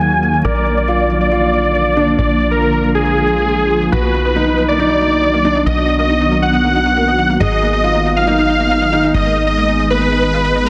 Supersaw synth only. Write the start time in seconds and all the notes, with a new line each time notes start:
Already playing: G#5
0.45 D5
0.77 D5
1.21 D5
2.18 D5
2.51 A#4
2.95 G#4
3.92 B4
4.25 B4
4.68 D5
5.66 D#5
5.99 D#5
6.42 F#5
7.40 D#5
7.73 D#5
8.16 F5
9.14 D#5
9.47 D#5
9.90 B4